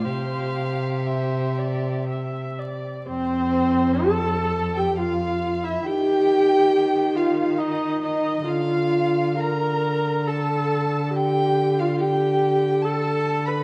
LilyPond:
<<
  \new Staff \with { instrumentName = "Violin" } { \time 3/4 \key f \major \tempo 4 = 68 g'2. | c''4 a''8. g''16 f''8. e''16 | g''4. f''8 ees''8 ees''8 | f''4 bes''4 a''4 |
g''8. f''16 g''4 a''8. b''16 | }
  \new Staff \with { instrumentName = "Violin" } { \time 3/4 \key f \major f''4 e''4 r4 | c''4 a''8. g''16 f''8. e''16 | g''4. f''8 ees''8 ees''8 | f''4 bes''4 a''4 |
g''8. f''16 g''4 a''8. b''16 | }
  \new Staff \with { instrumentName = "Viola" } { \time 3/4 \key f \major c''4 c''8 d''8 e''8 d''8 | c'4 a'8. g'16 f'8. e'16 | g'4. f'8 ees'8 ees'8 | f'4 bes'4 a'4 |
g'8. f'16 g'4 a'8. b'16 | }
  \new Staff \with { instrumentName = "Cello" } { \clef bass \time 3/4 \key f \major c2. | f,2. | ees2. | d2.~ |
d2. | }
>>